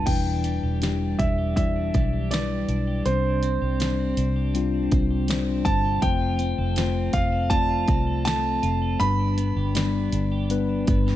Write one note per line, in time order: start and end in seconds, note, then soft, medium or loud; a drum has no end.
0.00 0.44 G3 soft
0.00 0.25 B3 medium
0.06 0.60 E1 medium
0.06 1.56 E2 medium
0.06 1.16 E3 medium
0.06 0.79 G3 medium
0.06 0.79 D4 medium
0.06 0.79 E4 medium
0.06 0.79 B4 medium
0.06 1.23 G5 medium
0.06 kick loud
0.06 closed hi-hat medium
0.06 crash medium
0.26 0.81 D4 soft
0.44 1.00 G3 medium
0.44 closed hi-hat medium
0.63 1.16 E1 medium
0.63 1.38 G4 medium
0.81 1.53 G3 medium
0.81 1.19 D4 soft
0.81 1.53 D4 medium
0.81 1.53 E4 medium
0.81 1.54 G4 medium
0.81 snare medium
0.81 closed hi-hat medium
1.01 1.94 G3 soft
1.19 1.90 E1 medium
1.19 1.76 D4 soft
1.19 1.55 E5 medium
1.19 kick medium
1.19 closed hi-hat medium
1.38 2.13 G4 medium
1.56 3.13 E2 medium
1.56 2.28 G3 medium
1.56 2.28 D4 medium
1.56 2.28 E4 medium
1.56 2.28 D5 medium
1.56 2.34 E5 medium
1.56 kick medium
1.56 closed hi-hat medium
1.76 2.31 D4 medium
1.94 2.65 B1 medium
1.94 2.50 G3 medium
1.94 kick medium
1.94 closed hi-hat soft
2.13 2.87 G4 medium
2.31 3.02 G3 medium
2.31 2.69 D4 medium
2.31 3.02 D4 medium
2.31 3.03 E4 medium
2.31 3.03 B4 medium
2.31 3.02 D5 medium
2.31 snare loud
2.31 closed hi-hat medium
2.50 3.43 G3 soft
2.69 3.03 B1 medium
2.69 3.25 D4 medium
2.69 closed hi-hat medium
2.87 3.61 G4 medium
3.05 3.58 C2 medium
3.05 4.13 C3 medium
3.05 4.53 C3 medium
3.05 3.76 G3 medium
3.05 3.76 C4 medium
3.05 3.12 C#4 soft
3.05 5.62 C5 medium
3.05 3.77 C5 medium
3.05 closed hi-hat medium
3.12 3.79 D4 medium
3.25 3.79 D4 medium
3.43 3.99 C4 medium
3.43 closed hi-hat medium
3.62 4.14 C2 medium
3.62 4.35 G4 medium
3.79 4.51 G3 medium
3.79 4.51 C4 medium
3.79 4.16 D4 soft
3.79 4.51 D4 medium
3.79 4.51 C5 medium
3.79 snare medium
3.79 closed hi-hat medium
3.99 4.91 C4 medium
4.17 4.88 C2 medium
4.17 4.72 D4 medium
4.17 closed hi-hat medium
4.36 5.09 G4 medium
4.55 6.10 C3 medium
4.55 5.25 G3 medium
4.55 5.25 C4 medium
4.55 5.26 D4 medium
4.55 5.26 F4 medium
4.55 closed hi-hat medium
4.74 5.28 D4 medium
4.92 5.62 C2 medium
4.92 5.47 C4 medium
4.92 kick medium
4.92 closed hi-hat medium
5.10 5.83 G4 medium
5.28 5.99 G3 medium
5.28 5.99 C4 medium
5.28 5.65 D4 medium
5.28 5.99 D4 medium
5.28 6.00 C5 medium
5.28 snare loud
5.28 closed hi-hat medium
5.48 6.39 C4 medium
5.65 6.00 G1 medium
5.65 6.10 D4 medium
5.65 6.03 A5 medium
5.65 kick medium
5.65 closed hi-hat medium
5.84 6.10 G4 medium
6.02 6.54 F1 loud
6.02 7.50 F3 medium
6.02 6.73 A3 medium
6.02 6.73 C4 medium
6.02 6.73 F4 medium
6.02 6.73 C5 medium
6.02 7.17 G5 medium
6.02 kick loud
6.02 closed hi-hat medium
6.21 6.75 F4 medium
6.39 6.94 C4 medium
6.39 closed hi-hat medium
6.58 7.10 F1 medium
6.58 7.31 A4 medium
6.76 7.47 A3 medium
6.76 7.47 C4 medium
6.76 7.12 F4 medium
6.76 7.47 F4 medium
6.76 7.48 C5 medium
6.76 snare medium
6.76 closed hi-hat medium
6.95 7.87 C4 medium
7.13 7.84 F1 medium
7.13 7.68 F4 medium
7.13 7.52 F5 medium
7.13 kick medium
7.13 closed hi-hat medium
7.32 8.06 A4 medium
7.50 9.07 F3 medium
7.50 8.22 A3 medium
7.50 8.22 C4 medium
7.50 8.22 F4 medium
7.50 8.22 D5 medium
7.50 8.24 A5 loud
7.50 kick medium
7.50 closed hi-hat medium
7.69 8.24 F4 medium
7.88 8.59 C2 medium
7.88 8.43 C4 medium
7.88 kick medium
7.88 closed hi-hat medium
8.07 8.81 A4 medium
8.25 8.97 A3 medium
8.25 8.97 C4 medium
8.25 8.61 F4 medium
8.25 8.97 A4 medium
8.25 9.02 A5 medium
8.25 snare loud
8.25 closed hi-hat medium
8.44 9.07 C4 medium
8.63 8.98 F1 medium
8.63 9.07 F4 medium
8.63 closed hi-hat medium
8.82 9.08 A4 medium
9.00 9.52 G1 medium
9.00 10.49 G2 medium
9.00 10.08 G2 medium
9.00 9.71 G3 medium
9.00 9.71 B3 medium
9.00 9.71 D4 medium
9.00 9.72 B4 medium
9.00 11.16 B5 loud
9.00 closed hi-hat medium
9.19 9.74 D4 medium
9.38 9.93 B3 medium
9.38 closed hi-hat medium
9.56 10.08 G1 medium
9.56 10.31 G4 medium
9.74 10.46 G3 medium
9.74 10.46 B3 medium
9.74 10.46 D4 medium
9.74 10.12 D4 medium
9.74 10.46 D5 medium
9.74 snare medium
9.74 closed hi-hat medium
9.94 10.86 B3 medium
10.12 10.84 G1 medium
10.12 10.68 D4 medium
10.12 closed hi-hat medium
10.32 11.05 G4 medium
10.50 11.16 G2 medium
10.50 11.16 G3 medium
10.50 11.16 B3 medium
10.50 11.16 D4 medium
10.50 11.16 B4 loud
10.50 closed hi-hat medium
10.69 11.16 D4 medium
10.87 11.16 G1 medium
10.87 11.16 B3 medium
10.87 kick medium
10.87 closed hi-hat medium
11.07 11.16 G4 medium
11.07 snare soft